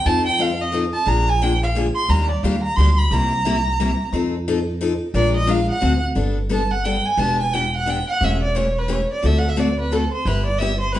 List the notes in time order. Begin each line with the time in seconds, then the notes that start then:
0.06 F2 F3 C4 D#4 A4 A5
0.26 G5
0.38 F3 C4 D#4 A4 F5
0.61 D#5
0.72 F3 C4 D#4 A4
0.93 A5
1.06 A#1 D3 F3 A#3 D4 G#4 A#5
1.29 G#5
1.42 D3 F3 A#3 D4 G#4 G5
1.62 F5
1.75 D3 F3 A#3 D4 G#4
1.95 C6
2.09 D#2 D#3 G3 A#3 D4 G4 A#5
2.30 D5
2.43 D#2 D#3 G3 A#3 D4 G4 F5
2.63 A#5
2.76 D2 D#3 G3 A#3 D4 G4 C6
2.98 B5
3.11 C2 C3 G3 A#3 E4 G4 A#5
3.45 C3 G3 A#3 E4 G4
3.80 C3 G3 A#3 E4 G4
4.12 F2 F3 C4 D#4 A4
4.48 F3 C4 D#4 A4
4.81 F3 C4 D#4 A4
5.14 A#1 F3 G#3 D4 F4 A#4 D5
5.36 D#5
5.47 F3 G#3 D4 F4 A#4 F5
5.71 F#5
5.81 D2 D3 A3 C4 F#4 A4
6.15 G1 G3 B3 D4 A4
6.49 G3 B3 D4 A4 A5
6.71 F#5
6.84 G3 B3 D4 A4 G5
7.05 G#5
7.17 E1 E3 B3 D4 G4 A5
7.40 G#5
7.53 E3 B3 D4 G4 G5
7.76 F#5
7.86 E3 B3 D4 G4 G5
8.09 F#5
8.21 E1 E3 A3 C#4 G4 E5
8.43 D5
8.55 E3 A3 C#4 G4 C#5
8.78 B4
8.88 E3 A3 C#4 G4
8.92 C#5
9.12 D5
9.22 D2 D3 A3 C4 F#4 A4 E5
9.38 F#5
9.49 E5
9.56 D3 A3 C4 F#4 A4 D5
9.80 B4
9.92 D3 A3 C4 F#4 A4
10.12 C5
10.25 G1 G3 B3 E4 G4 B4
10.46 D5
10.58 G3 B3 E4 E5
10.62 G4
10.80 C5
10.92 G3 B3 E4 G4 B4